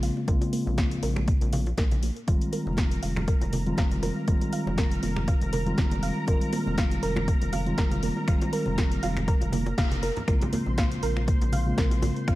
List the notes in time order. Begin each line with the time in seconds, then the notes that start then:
Already playing: A#1 C#3 G#3 A#3 C4 F4
0.03 F5, open hi-hat
0.17 high bongo
0.27 A#1 C#3 G#3 A#3 C4 F4 A#4, kick, closed hi-hat
0.41 closed hi-hat, high bongo
0.53 A#3, open hi-hat
0.67 A#1, high conga
0.78 F5, kick, snare, closed hi-hat, high bongo
0.91 closed hi-hat
1.03 A#1 A#4, open hi-hat, high bongo
1.16 finger snap, low conga
1.28 A#3, kick, closed hi-hat
1.41 A#1, closed hi-hat, high bongo
1.53 F5, open hi-hat, high conga
1.66 closed hi-hat, high bongo
1.77 A#1 A#4, kick, snare, closed hi-hat, high conga
1.91 closed hi-hat, high conga
2.03 A#3, open hi-hat, high bongo
2.16 closed hi-hat
2.27 F1 D#3 G3 G#3 C4 F4 A#4 F5 A#5, kick, closed hi-hat
2.41 closed hi-hat
2.52 A#4, open hi-hat, high bongo
2.67 F1, high conga
2.77 A#3, kick, snare, closed hi-hat, high bongo
2.91 closed hi-hat
3.03 F1 F5, open hi-hat
3.17 finger snap, high bongo, low conga
3.28 A#4, kick, closed hi-hat
3.41 F1, closed hi-hat, high bongo
3.53 A#3, open hi-hat, high conga
3.66 D#3 G3 G#3 C4 F4, closed hi-hat
3.77 F1 F5, kick, snare, closed hi-hat, high bongo, high conga
3.91 closed hi-hat, high conga
4.03 A#4, open hi-hat, high bongo
4.27 F1 D#3 G3 G#3 A#3 C4 F4, kick, closed hi-hat
4.41 closed hi-hat, high bongo
4.53 F5, open hi-hat
4.66 F1, high bongo, high conga
4.78 A#4, kick, snare, closed hi-hat
4.92 closed hi-hat
5.03 F1 A#3, open hi-hat, high bongo
5.16 finger snap, low conga
5.28 F5, kick, closed hi-hat, high bongo
5.41 F1, closed hi-hat
5.53 A#4, open hi-hat, high conga
5.66 D#3 G3 G#3 C4 F4, closed hi-hat, high bongo
5.78 F1 A#3, kick, snare, closed hi-hat, high conga
5.91 closed hi-hat, high bongo, high conga
6.03 F5, open hi-hat
6.27 F1 D#3 G3 G#3 C4 F4 A#4, kick, closed hi-hat, high bongo
6.41 closed hi-hat
6.53 A#3, open hi-hat, high bongo
6.67 F1, high conga
6.78 F5, kick, snare, closed hi-hat
6.91 closed hi-hat, high bongo
7.03 F1 A#4, open hi-hat
7.16 finger snap, high bongo, low conga
7.28 A#3, kick, closed hi-hat
7.42 F1, closed hi-hat
7.53 F5, open hi-hat, high bongo, high conga
7.66 D#3 G3 G#3 C4 F4, closed hi-hat
7.78 F1 A#4, kick, snare, closed hi-hat, high bongo, high conga
7.91 closed hi-hat, high conga
8.03 A#3, open hi-hat
8.17 high bongo
8.27 F1 D#3 G3 G#3 C4 F4 F5, finger snap, kick, closed hi-hat
8.42 closed hi-hat, high bongo
8.53 A#4, open hi-hat
8.66 F1, high conga
8.78 A#3, kick, snare, closed hi-hat, high bongo
8.92 closed hi-hat
9.03 F1 F5, open hi-hat, high bongo
9.17 finger snap, closed hi-hat, low conga
9.28 A#4, kick, closed hi-hat
9.41 F1, closed hi-hat, high bongo
9.52 A#3, open hi-hat, high conga
9.66 closed hi-hat, high bongo
9.78 F1 F5, kick, snare, closed hi-hat, high conga
9.92 closed hi-hat, high conga
10.03 A#4, open hi-hat, high bongo
10.17 closed hi-hat, low conga
10.27 A#1 C#3 G#3 A#3 C4 F4 A#4 C5 C6, finger snap, kick, closed hi-hat
10.42 closed hi-hat, low conga
10.53 A#3, open hi-hat, high bongo, low conga
10.66 A#1, high conga
10.78 F5, kick, snare, closed hi-hat, high bongo
10.91 closed hi-hat
11.03 A#1 A#4, open hi-hat
11.17 finger snap, high bongo
11.28 A#3, kick, closed hi-hat
11.41 A#1, closed hi-hat, high bongo
11.53 F5, open hi-hat, high conga
11.66 C#3 G#3 A#3 C4 F4
11.78 A#1 A#4, kick, snare, closed hi-hat, high bongo, high conga
11.91 closed hi-hat, high conga
12.02 A#3, open hi-hat, high bongo, low conga
12.16 closed hi-hat
12.27 A#1 C#3 G#3 A#3 C4 F4 F5, finger snap, kick, closed hi-hat